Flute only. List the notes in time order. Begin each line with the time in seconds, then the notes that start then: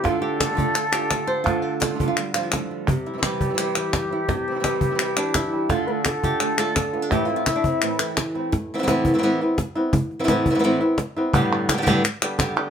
0.05 A4
2.88 G4
5.70 A4
5.87 B4
5.91 A4
6.04 G4
6.08 A4
7.10 E4